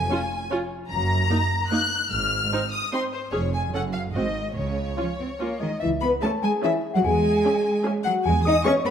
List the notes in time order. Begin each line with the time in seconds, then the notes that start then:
Already playing: G#5
0.10 C#4 F4
0.50 C#4 F4
0.89 F#1 F#2 A#5
1.30 A#3 D#4
1.71 A#3 D#4 F#6
2.11 G#1 G#2 F6
2.52 C4 D#4
2.72 D#6
2.93 C4 D#4 C6
3.13 C5
3.31 F1 F2 C#4 G#4 C#5
3.52 G#5
3.73 F#1 F#2 C#4 A4 F#5
3.93 F5
4.13 G#1 G#2 C4 F#4 D#5
4.56 C#2 C#3 C#5
4.97 F3 C#4 F4
5.20 C4
5.40 A#3 C#4 F4
5.59 D#3 G#3 D#4 D#5
5.80 C#2 E3 E4 E5
6.01 B3 B4 B5
6.22 A3 C#4 G#4 A4 E5 A5
6.43 G#3 G#4 G#5
6.63 E3 C#4 E4 G#4 E5
6.94 F#3 F#4 F#5
7.04 E2 G#3 G#4 G#5
7.45 C#4 G#4 E5
7.85 C#4 G#4 E5
8.05 F#3 F#4 F#5
8.25 E2 G#3 G#4 G#5
8.45 D#4 D#5 D#6
8.64 B3 C#4 G#4 C#5 E5 C#6
8.85 B3 B4 B5